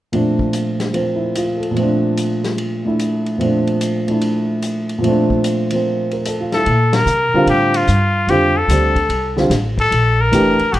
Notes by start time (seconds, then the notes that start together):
0.12 A#2 F3 A3 C4 D4, ride
0.39 kick
0.53 hi-hat pedal, ride
0.80 snare, ride
0.93 F3 A#3 C4, ride
1.16 E4
1.35 F4, hi-hat pedal, ride
1.57 A4
1.63 ride
1.71 A#2 F3
1.76 A3 C4, ride
1.82 D4
2.17 hi-hat pedal, ride
2.44 snare, ride
2.58 ride
2.85 A3 D4 E4
2.99 hi-hat pedal, ride
3.26 ride
3.38 A#2 F3 A3 C4, ride
3.42 D4
3.67 ride
3.81 hi-hat pedal, ride
4.08 A3 D4 E4, ride
4.21 ride
4.62 hi-hat pedal, ride
4.89 ride
4.98 A#2 F3
5.04 A3 C4, ride
5.09 D4
5.30 kick
5.44 hi-hat pedal, ride
5.71 F3 A#3 C4, ride
6.11 A#4, ride
6.25 A4, hi-hat pedal, ride
6.40 F4
6.52 E4 A4, snare, ride
6.66 A#2, ride
6.93 A#4, snare, ride
7.06 C3, hi-hat pedal
7.34 D3 G3 C4 F4, muted upright bass stroke
7.46 A2 G4, ride
7.74 F4, ride
7.87 G2, hi-hat pedal
8.27 F2 D3 G3 C4 F4 G4, ride
8.57 A4
8.68 D2 D3 G3 C4 D4, hi-hat pedal, ride
8.96 kick, ride
9.09 C2, ride
9.36 D3 G3 C4 F4, snare
9.50 A1, snare, hi-hat pedal, ride
9.78 A4, kick, ride
9.91 A#1, ride
10.21 A#4
10.32 F1 E3 A3 D4 G4, hi-hat pedal, ride
10.59 muted upright bass stroke, ride
10.72 G1 F#4 G4, ride